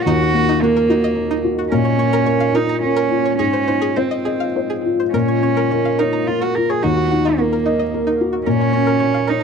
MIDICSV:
0, 0, Header, 1, 5, 480
1, 0, Start_track
1, 0, Key_signature, -5, "minor"
1, 0, Tempo, 554529
1, 41, Time_signature, 3, 2, 24, 8
1, 2441, Tempo, 575816
1, 5321, Tempo, 549451
1, 8081, End_track
2, 0, Start_track
2, 0, Title_t, "Synth pluck"
2, 0, Program_c, 0, 84
2, 60, Note_on_c, 0, 63, 92
2, 127, Note_off_c, 0, 63, 0
2, 190, Note_on_c, 0, 66, 54
2, 254, Note_off_c, 0, 66, 0
2, 311, Note_on_c, 0, 66, 61
2, 374, Note_off_c, 0, 66, 0
2, 424, Note_on_c, 0, 63, 81
2, 490, Note_off_c, 0, 63, 0
2, 550, Note_on_c, 0, 66, 64
2, 614, Note_off_c, 0, 66, 0
2, 662, Note_on_c, 0, 70, 64
2, 728, Note_off_c, 0, 70, 0
2, 780, Note_on_c, 0, 63, 84
2, 846, Note_off_c, 0, 63, 0
2, 900, Note_on_c, 0, 75, 72
2, 965, Note_off_c, 0, 75, 0
2, 1132, Note_on_c, 0, 63, 88
2, 1199, Note_off_c, 0, 63, 0
2, 1372, Note_on_c, 0, 66, 60
2, 1438, Note_off_c, 0, 66, 0
2, 1485, Note_on_c, 0, 70, 75
2, 1553, Note_off_c, 0, 70, 0
2, 1599, Note_on_c, 0, 73, 54
2, 1669, Note_off_c, 0, 73, 0
2, 1722, Note_on_c, 0, 73, 62
2, 1792, Note_off_c, 0, 73, 0
2, 1843, Note_on_c, 0, 70, 94
2, 1913, Note_off_c, 0, 70, 0
2, 1958, Note_on_c, 0, 73, 65
2, 2030, Note_off_c, 0, 73, 0
2, 2080, Note_on_c, 0, 77, 65
2, 2152, Note_off_c, 0, 77, 0
2, 2205, Note_on_c, 0, 70, 72
2, 2275, Note_off_c, 0, 70, 0
2, 2329, Note_on_c, 0, 82, 59
2, 2399, Note_off_c, 0, 82, 0
2, 2561, Note_on_c, 0, 70, 82
2, 2631, Note_off_c, 0, 70, 0
2, 2803, Note_on_c, 0, 73, 53
2, 2873, Note_off_c, 0, 73, 0
2, 2916, Note_on_c, 0, 68, 79
2, 2988, Note_off_c, 0, 68, 0
2, 3034, Note_on_c, 0, 72, 52
2, 3106, Note_off_c, 0, 72, 0
2, 3154, Note_on_c, 0, 72, 59
2, 3226, Note_off_c, 0, 72, 0
2, 3271, Note_on_c, 0, 68, 82
2, 3345, Note_off_c, 0, 68, 0
2, 3393, Note_on_c, 0, 72, 56
2, 3467, Note_off_c, 0, 72, 0
2, 3516, Note_on_c, 0, 75, 58
2, 3590, Note_off_c, 0, 75, 0
2, 3634, Note_on_c, 0, 68, 74
2, 3709, Note_off_c, 0, 68, 0
2, 3760, Note_on_c, 0, 77, 52
2, 3834, Note_off_c, 0, 77, 0
2, 4006, Note_on_c, 0, 68, 68
2, 4080, Note_off_c, 0, 68, 0
2, 4255, Note_on_c, 0, 72, 52
2, 4326, Note_off_c, 0, 72, 0
2, 4374, Note_on_c, 0, 70, 81
2, 4445, Note_off_c, 0, 70, 0
2, 4494, Note_on_c, 0, 73, 51
2, 4565, Note_off_c, 0, 73, 0
2, 4616, Note_on_c, 0, 73, 61
2, 4686, Note_off_c, 0, 73, 0
2, 4732, Note_on_c, 0, 70, 73
2, 4803, Note_off_c, 0, 70, 0
2, 4852, Note_on_c, 0, 73, 52
2, 4922, Note_off_c, 0, 73, 0
2, 4968, Note_on_c, 0, 77, 57
2, 5039, Note_off_c, 0, 77, 0
2, 5082, Note_on_c, 0, 70, 80
2, 5153, Note_off_c, 0, 70, 0
2, 5199, Note_on_c, 0, 82, 55
2, 5270, Note_off_c, 0, 82, 0
2, 5444, Note_on_c, 0, 70, 73
2, 5515, Note_off_c, 0, 70, 0
2, 5688, Note_on_c, 0, 73, 51
2, 5758, Note_off_c, 0, 73, 0
2, 5805, Note_on_c, 0, 63, 74
2, 5876, Note_off_c, 0, 63, 0
2, 5928, Note_on_c, 0, 66, 53
2, 5998, Note_off_c, 0, 66, 0
2, 6053, Note_on_c, 0, 66, 54
2, 6121, Note_off_c, 0, 66, 0
2, 6173, Note_on_c, 0, 63, 80
2, 6241, Note_off_c, 0, 63, 0
2, 6287, Note_on_c, 0, 66, 55
2, 6356, Note_off_c, 0, 66, 0
2, 6413, Note_on_c, 0, 70, 54
2, 6480, Note_off_c, 0, 70, 0
2, 6527, Note_on_c, 0, 63, 73
2, 6595, Note_off_c, 0, 63, 0
2, 6648, Note_on_c, 0, 75, 56
2, 6716, Note_off_c, 0, 75, 0
2, 6888, Note_on_c, 0, 63, 73
2, 6954, Note_off_c, 0, 63, 0
2, 7112, Note_on_c, 0, 66, 55
2, 7183, Note_off_c, 0, 66, 0
2, 7233, Note_on_c, 0, 70, 72
2, 7302, Note_off_c, 0, 70, 0
2, 7359, Note_on_c, 0, 73, 47
2, 7427, Note_off_c, 0, 73, 0
2, 7465, Note_on_c, 0, 73, 57
2, 7537, Note_off_c, 0, 73, 0
2, 7585, Note_on_c, 0, 70, 80
2, 7658, Note_off_c, 0, 70, 0
2, 7701, Note_on_c, 0, 73, 57
2, 7776, Note_off_c, 0, 73, 0
2, 7826, Note_on_c, 0, 77, 56
2, 7902, Note_off_c, 0, 77, 0
2, 7941, Note_on_c, 0, 70, 74
2, 8020, Note_off_c, 0, 70, 0
2, 8081, End_track
3, 0, Start_track
3, 0, Title_t, "Ambient pad"
3, 0, Program_c, 1, 92
3, 0, Note_on_c, 1, 58, 67
3, 52, Note_on_c, 1, 66, 68
3, 58, Note_on_c, 1, 75, 62
3, 1479, Note_off_c, 1, 66, 0
3, 1481, Note_on_c, 1, 65, 67
3, 1482, Note_off_c, 1, 75, 0
3, 1483, Note_on_c, 1, 73, 68
3, 2889, Note_off_c, 1, 58, 0
3, 2909, Note_on_c, 1, 75, 64
3, 2911, Note_on_c, 1, 56, 68
3, 2920, Note_off_c, 1, 73, 0
3, 4369, Note_off_c, 1, 75, 0
3, 4370, Note_off_c, 1, 56, 0
3, 4376, Note_on_c, 1, 58, 58
3, 4376, Note_on_c, 1, 70, 61
3, 5804, Note_off_c, 1, 65, 0
3, 5807, Note_on_c, 1, 66, 65
3, 7232, Note_off_c, 1, 66, 0
3, 7245, Note_on_c, 1, 65, 67
3, 8081, Note_off_c, 1, 58, 0
3, 8081, Note_off_c, 1, 65, 0
3, 8081, Note_off_c, 1, 70, 0
3, 8081, End_track
4, 0, Start_track
4, 0, Title_t, "Felt piano"
4, 0, Program_c, 2, 0
4, 0, Control_c, 2, 64, 127
4, 51, Note_on_c, 2, 39, 61
4, 59, Control_c, 2, 64, 0
4, 209, Control_c, 2, 64, 127
4, 296, Note_on_c, 2, 58, 50
4, 538, Note_on_c, 2, 70, 62
4, 674, Note_off_c, 2, 58, 0
4, 773, Note_on_c, 2, 66, 65
4, 912, Note_off_c, 2, 70, 0
4, 999, Note_on_c, 2, 70, 57
4, 1146, Note_off_c, 2, 66, 0
4, 1251, Note_on_c, 2, 66, 52
4, 1378, Note_off_c, 2, 70, 0
4, 1444, Note_off_c, 2, 39, 0
4, 1481, Note_off_c, 2, 66, 0
4, 1489, Note_on_c, 2, 46, 66
4, 1490, Control_c, 2, 64, 0
4, 1623, Control_c, 2, 64, 127
4, 1713, Note_on_c, 2, 58, 46
4, 1961, Note_on_c, 2, 70, 60
4, 2100, Note_off_c, 2, 58, 0
4, 2190, Note_on_c, 2, 65, 55
4, 2346, Note_off_c, 2, 70, 0
4, 2454, Note_on_c, 2, 70, 50
4, 2578, Note_off_c, 2, 65, 0
4, 2683, Note_on_c, 2, 65, 36
4, 2827, Note_off_c, 2, 70, 0
4, 2890, Note_off_c, 2, 46, 0
4, 2913, Note_on_c, 2, 44, 42
4, 2919, Note_off_c, 2, 65, 0
4, 2930, Control_c, 2, 64, 0
4, 3086, Control_c, 2, 64, 127
4, 3161, Note_on_c, 2, 63, 33
4, 3402, Note_on_c, 2, 72, 40
4, 3545, Note_off_c, 2, 63, 0
4, 3639, Note_on_c, 2, 75, 41
4, 3791, Note_off_c, 2, 72, 0
4, 3893, Note_on_c, 2, 72, 35
4, 4031, Note_off_c, 2, 75, 0
4, 4136, Note_on_c, 2, 65, 33
4, 4280, Note_off_c, 2, 72, 0
4, 4338, Note_off_c, 2, 44, 0
4, 4370, Note_on_c, 2, 46, 45
4, 4375, Note_off_c, 2, 65, 0
4, 4388, Control_c, 2, 64, 0
4, 4536, Control_c, 2, 64, 127
4, 4615, Note_on_c, 2, 61, 35
4, 4860, Note_on_c, 2, 70, 45
4, 4993, Note_off_c, 2, 61, 0
4, 5094, Note_on_c, 2, 73, 45
4, 5232, Note_off_c, 2, 70, 0
4, 5331, Note_on_c, 2, 70, 46
4, 5469, Note_off_c, 2, 73, 0
4, 5582, Note_on_c, 2, 65, 40
4, 5710, Note_off_c, 2, 70, 0
4, 5764, Note_off_c, 2, 46, 0
4, 5811, Note_off_c, 2, 65, 0
4, 5815, Note_on_c, 2, 39, 49
4, 5818, Control_c, 2, 64, 0
4, 5964, Control_c, 2, 64, 127
4, 6059, Note_on_c, 2, 63, 43
4, 6297, Note_on_c, 2, 70, 51
4, 6433, Note_off_c, 2, 63, 0
4, 6529, Note_on_c, 2, 75, 51
4, 6668, Note_off_c, 2, 70, 0
4, 6776, Note_on_c, 2, 70, 52
4, 6902, Note_off_c, 2, 75, 0
4, 7011, Note_on_c, 2, 66, 48
4, 7145, Note_off_c, 2, 70, 0
4, 7201, Note_off_c, 2, 39, 0
4, 7238, Note_off_c, 2, 66, 0
4, 7239, Note_on_c, 2, 46, 55
4, 7243, Control_c, 2, 64, 0
4, 7402, Control_c, 2, 64, 127
4, 7475, Note_on_c, 2, 61, 38
4, 7723, Note_on_c, 2, 70, 44
4, 7858, Note_off_c, 2, 61, 0
4, 7964, Note_on_c, 2, 73, 41
4, 8081, Note_off_c, 2, 46, 0
4, 8081, Note_off_c, 2, 70, 0
4, 8081, Note_off_c, 2, 73, 0
4, 8081, End_track
5, 0, Start_track
5, 0, Title_t, "Cello"
5, 0, Program_c, 3, 42
5, 43, Note_on_c, 3, 66, 104
5, 535, Note_on_c, 3, 58, 87
5, 548, Note_off_c, 3, 66, 0
5, 1242, Note_off_c, 3, 58, 0
5, 1478, Note_on_c, 3, 61, 87
5, 2208, Note_on_c, 3, 63, 79
5, 2221, Note_off_c, 3, 61, 0
5, 2438, Note_off_c, 3, 63, 0
5, 2443, Note_on_c, 3, 61, 78
5, 2908, Note_off_c, 3, 61, 0
5, 2914, Note_on_c, 3, 61, 70
5, 3391, Note_on_c, 3, 60, 50
5, 3404, Note_off_c, 3, 61, 0
5, 4128, Note_off_c, 3, 60, 0
5, 4371, Note_on_c, 3, 61, 76
5, 5081, Note_on_c, 3, 63, 64
5, 5094, Note_off_c, 3, 61, 0
5, 5314, Note_on_c, 3, 65, 68
5, 5327, Note_off_c, 3, 63, 0
5, 5453, Note_on_c, 3, 66, 69
5, 5466, Note_off_c, 3, 65, 0
5, 5562, Note_on_c, 3, 70, 69
5, 5575, Note_off_c, 3, 66, 0
5, 5692, Note_on_c, 3, 68, 69
5, 5705, Note_off_c, 3, 70, 0
5, 5799, Note_on_c, 3, 66, 81
5, 5812, Note_off_c, 3, 68, 0
5, 6290, Note_on_c, 3, 58, 68
5, 6303, Note_off_c, 3, 66, 0
5, 6997, Note_off_c, 3, 58, 0
5, 7231, Note_on_c, 3, 61, 86
5, 7953, Note_on_c, 3, 63, 72
5, 7966, Note_off_c, 3, 61, 0
5, 8081, Note_off_c, 3, 63, 0
5, 8081, End_track
0, 0, End_of_file